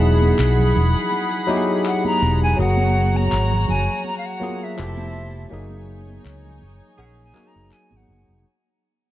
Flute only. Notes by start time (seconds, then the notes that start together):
1.87 F#5
2.07 A#5
2.43 G#5
2.61 F#5
3.17 A#5
3.69 G#5
4.07 A#5
4.18 F5
4.26 F#5
4.63 E5
6.99 F#5
7.23 G#5
7.47 A#5
7.73 G#5
7.97 F#5